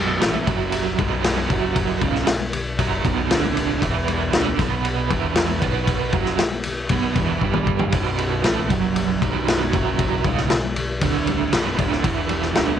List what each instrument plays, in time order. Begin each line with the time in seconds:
Already playing: fingered electric bass B0, overdriven electric guitar B1 B2, synth drone B1
0.21 fingered electric bass A1, overdriven electric guitar A2 A3, snare, ride
0.35 high conga
0.47 fingered electric bass F#1, overdriven electric guitar F#2 F#3, kick, ride, low conga
0.72 ride
0.98 fingered electric bass B0, overdriven electric guitar B1 B2, kick, ride, high conga
1.12 low conga
1.24 snare, ride
1.37 high conga
1.50 fingered electric bass F#1, overdriven electric guitar F#2 F#3, kick, ride, low conga
1.76 kick, ride
2.01 fingered electric bass C#1, overdriven electric guitar C#2 C#3, kick, ride, high conga
2.15 snare
2.27 snare, ride
2.41 high conga
2.53 ride, low conga
2.78 fingered electric bass F#1, overdriven electric guitar F#2 F#3, kick, ride
3.05 fingered electric bass B0, overdriven electric guitar B1 B2, kick, ride, high conga
3.18 low conga
3.31 fingered electric bass D1, overdriven electric guitar D2 D3, snare, ride
3.44 high conga
3.57 ride
3.82 fingered electric bass E1, overdriven electric guitar E2 E3, kick, ride
4.08 ride, high conga
4.33 fingered electric bass D1, overdriven electric guitar D2 D3, snare, ride
4.46 high conga
4.59 fingered electric bass B1, overdriven electric guitar B2 B3, kick, snare, ride, low conga
4.85 ride
5.10 fingered electric bass E1, overdriven electric guitar E2 E3, kick, ride, high conga
5.36 snare, ride
5.49 high conga
5.62 fingered electric bass B1, overdriven electric guitar B2 B3, kick, ride, low conga
5.87 kick, ride
6.13 fingered electric bass F#1, overdriven electric guitar F#2 F#3, kick, ride
6.26 snare
6.39 snare, ride
6.52 high conga
6.64 ride, low conga
6.89 fingered electric bass B1, overdriven electric guitar B2 B3, kick, ride, high conga
7.15 fingered electric bass E1, overdriven electric guitar E2 E3, kick, ride, high conga
7.30 low conga
7.41 fingered electric bass G1, overdriven electric guitar G2 G3, kick
7.53 mid tom, high conga
7.67 kick, low conga
7.79 floor tom
7.92 fingered electric bass B0, synth drone B1, overdriven electric guitar B1 B2, kick, ride
8.18 ride
8.44 fingered electric bass A1, overdriven electric guitar A2 A3, snare, ride
8.57 high conga
8.70 fingered electric bass F#1, overdriven electric guitar F#2 F#3, kick, ride, low conga
8.96 ride
9.22 fingered electric bass B0, overdriven electric guitar B1 B2, kick, ride, high conga
9.34 low conga
9.48 snare, ride
9.60 high conga
9.73 fingered electric bass F#1, overdriven electric guitar F#2 F#3, kick, ride, low conga
9.99 kick, ride
10.24 fingered electric bass C#1, overdriven electric guitar C#2 C#3, kick, ride, high conga
10.37 snare
10.50 snare, ride
10.64 high conga
10.76 ride, low conga
11.01 fingered electric bass D1, overdriven electric guitar D2 D3, kick, ride
11.27 ride, high conga
11.41 low conga
11.53 fingered electric bass B0, overdriven electric guitar B1 B2, snare, ride
11.67 high conga
11.79 fingered electric bass D1, overdriven electric guitar D2 D3, kick, ride, low conga
11.92 snare
12.04 fingered electric bass E1, overdriven electric guitar E2 E3, kick, ride
12.29 ride, high conga
12.42 snare
12.55 fingered electric bass D1, overdriven electric guitar D2 D3, snare, ride
12.68 high conga